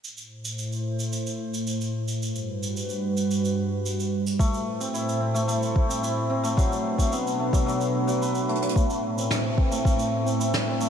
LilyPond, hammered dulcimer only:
\new Staff \with { instrumentName = "Hammered dulcimer" } { \time 4/4 \key a \dorian \tempo 4 = 110 r1 | r1 | a8. c'16 e'16 r16 c'16 a16 a8. c'16 e'16 r16 c'16 a16 | fis8. a16 b16 r16 a16 fis16 fis16 r8 fis16 b'16 r16 a16 fis16 |
a8. c'16 e'16 r16 c'16 a16 a8. c'16 e'16 r16 c'16 a16 | }